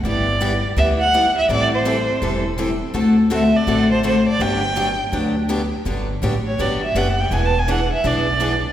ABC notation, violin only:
X:1
M:4/4
L:1/8
Q:"Swing" 1/4=165
K:G
V:1 name="Violin"
d3 z e f2 e | d c4 z3 | z2 e d2 c c d | g4 z4 |
z3 ^c d e f g | (3^g a g f e d4 |]